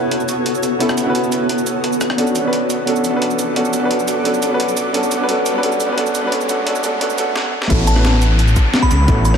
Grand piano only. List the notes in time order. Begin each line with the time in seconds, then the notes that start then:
Already playing: B3 C#4 E4 F#4 A4 B4
0.79 B3 C#4 E4 F#4 A4
1.04 B3 C#4 E4
1.08 F#4 B4
2.17 B3 C#4 D4 F#4 A4
2.41 B3 C#4 D4
2.46 F#4 B4
2.86 B3 C#4 D4 F#4 A4
3.10 B3 C#4 D4
3.15 F#4 B4
3.55 B3 C#4 D4 F#4 A4
3.79 B3 C#4 D4
3.84 F#4 B4
4.24 B3 C#4 D4 F#4 A4
4.48 B3 C#4 D4
4.53 F#4 B4
4.93 B3 C#4 D4 F#4 A4
5.17 B3 C#4 D4
5.22 F#4 B4
5.27 B3 C#4 D4 F#4 A4
5.52 B3 C#4 D4
5.56 F#4 B4
5.62 B3 C#4 D4 F#4 A4
5.86 B3 C#4 D4
5.91 F#4 B4
5.96 B3 C#4 D4 F#4 A4
6.21 B3 C#4 D4
6.26 F#4 B4
6.31 B3 C#4 D4 F#4 A4
6.48 B3 C#4 D4 F#4 A4
6.65 B3 C#4 D4 F#4 A4
6.82 B3 C#4 D4 F#4 A4
7.00 B3 C#4 D4 F#4 A4
7.17 B3 C#4 D4 F#4 A4
7.68 B3 C#4 E4 F#4 A4
7.93 B3 C#4 E4
7.98 F#4 B4
9.07 B3 C#4 E4 F#4 A4
9.31 B3 C#4 E4